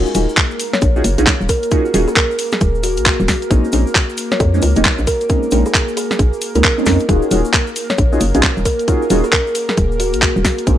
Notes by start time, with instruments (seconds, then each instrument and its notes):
Already playing: analog synth pad A#3 A#4
0.06 cabasa
0.15 fm bass D#1, synth stab C#4 D#4 F4 F#4 G#4, open hi-hat, cabasa
0.29 cabasa
0.37 kick, clap, closed hi-hat, cabasa
0.51 cabasa
0.60 open hi-hat, cabasa
0.73 kalimba C#5, snare, cabasa
0.81 fm bass A#1, kick, closed hi-hat, cabasa
0.96 synth stab C#4 D#4 F4 F#4 G#4, cabasa
1.04 fm bass F#1, open hi-hat, cabasa
1.18 fm bass A#1, synth stab C#4 D#4 F4 F#4 G#4, closed hi-hat, cabasa
1.27 kick, clap, snare, closed hi-hat, cabasa
1.41 fm bass D#1, cabasa
1.49 kalimba A#4, kick, open hi-hat, cabasa
1.63 closed hi-hat, cabasa
1.71 synth stab C#4 D#4 F4 F#4 G#4, kick, closed hi-hat, cabasa
1.85 cabasa
1.94 fm bass D#1, synth stab C#4 D#4 F4 F#4 G#4, open hi-hat, cabasa
2.08 kalimba G#4, cabasa
2.16 kalimba A#4, kick, clap, closed hi-hat, cabasa
2.31 cabasa
2.39 open hi-hat, cabasa
2.52 kalimba G#4, snare, cabasa
2.61 fm bass D#1, kick, closed hi-hat, cabasa
2.75 cabasa
2.83 kalimba F#4, open hi-hat, cabasa
2.97 fm bass A#1, closed hi-hat, cabasa
3.06 kick, clap, closed hi-hat, cabasa
3.20 fm bass D#1, cabasa
3.28 kick, snare, open hi-hat, cabasa
3.42 closed hi-hat, cabasa
3.51 fm bass A#1, synth stab G#3 A#3 C4 C#4 D#4, kick, closed hi-hat, cabasa
3.64 cabasa
3.72 fm bass A#1, synth stab G#3 A#3 C4 C#4 D#4, open hi-hat, cabasa
3.87 cabasa
3.95 kick, clap, closed hi-hat, cabasa
4.10 cabasa
4.17 open hi-hat, cabasa
4.31 kalimba C#5, snare, cabasa
4.40 fm bass F2, kick, closed hi-hat, cabasa
4.54 synth stab G#3 A#3 C4 C#4 D#4, cabasa
4.62 fm bass C#2, open hi-hat, cabasa
4.76 fm bass F1, synth stab G#3 A#3 C4 C#4 D#4, closed hi-hat, cabasa
4.84 kick, clap, snare, closed hi-hat, cabasa
4.98 fm bass A#1, cabasa
5.07 kalimba A#4, kick, open hi-hat, cabasa
5.21 closed hi-hat, cabasa
5.29 synth stab G#3 A#3 C4 C#4 D#4, kick, closed hi-hat, cabasa
5.43 cabasa
5.51 fm bass A#1, synth stab G#3 A#3 C4 C#4 D#4, open hi-hat, cabasa
5.66 kalimba G#4, cabasa
5.74 kick, clap, closed hi-hat, cabasa
5.88 cabasa
5.97 kalimba G#4, open hi-hat, cabasa
6.11 kalimba G#4, snare, cabasa
6.19 fm bass A#1, kick, closed hi-hat, cabasa
6.33 cabasa
6.41 open hi-hat, cabasa
6.55 fm bass C#2, synth stab G#3 A#3 C4 C#4 D#4, kalimba A#4, closed hi-hat, cabasa
6.64 kick, clap, closed hi-hat, cabasa
6.78 synth stab G#3 A#3 C4 C#4 D#4, cabasa
6.86 fm bass F2, synth stab G#3 A#3 C4 C#4 D#4, kick, snare, open hi-hat, cabasa
6.99 closed hi-hat, cabasa
7.09 fm bass D#1, analog synth pad A#3 A#4, synth stab C#4 D#4 F4 F#4 G#4, kick, closed hi-hat, cabasa
7.22 cabasa
7.31 fm bass D#1, synth stab C#4 D#4 F4 F#4 G#4, open hi-hat, cabasa
7.45 cabasa
7.53 kick, clap, closed hi-hat, cabasa
7.67 cabasa
7.76 open hi-hat, cabasa
7.90 kalimba C#5, snare, cabasa
7.98 fm bass A#1, kick, closed hi-hat, cabasa
8.12 synth stab C#4 D#4 F4 F#4 G#4, cabasa
8.20 fm bass F#1, open hi-hat, cabasa
8.35 fm bass A#1, synth stab C#4 D#4 F4 F#4 G#4, closed hi-hat, cabasa
8.43 kick, clap, snare, closed hi-hat, cabasa
8.57 fm bass D#1, cabasa
8.65 kalimba A#4, kick, open hi-hat, cabasa
8.79 closed hi-hat, cabasa
8.88 synth stab C#4 D#4 F4 F#4 G#4, kick, closed hi-hat, cabasa
9.02 cabasa
9.10 fm bass D#1, synth stab C#4 D#4 F4 F#4 G#4, open hi-hat, cabasa
9.24 kalimba G#4, cabasa
9.33 kalimba A#4, kick, clap, closed hi-hat, cabasa
9.47 cabasa
9.55 open hi-hat, cabasa
9.69 kalimba G#4, snare, cabasa
9.77 fm bass D#1, kick, closed hi-hat, cabasa
9.92 cabasa
10.00 kalimba F#4, open hi-hat, cabasa
10.13 fm bass A#1, closed hi-hat, cabasa
10.21 kick, clap, closed hi-hat, cabasa
10.36 fm bass D#1, cabasa
10.45 kick, snare, open hi-hat, cabasa
10.58 closed hi-hat, cabasa
10.67 fm bass A#1, synth stab G#3 A#3 C4 C#4 D#4, kick, closed hi-hat, cabasa